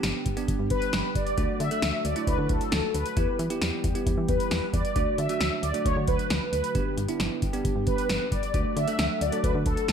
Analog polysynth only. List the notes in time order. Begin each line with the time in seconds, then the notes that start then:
0.71 B4
1.16 D5
1.60 E5
2.05 D5
2.27 B4
2.43 B4
2.50 A4
2.94 B4
4.29 B4
4.74 D5
5.18 E5
5.63 D5
5.86 C#5
6.08 B4
6.53 B4
7.87 B4
8.32 D5
8.77 E5
9.21 D5
9.44 B4
9.66 A4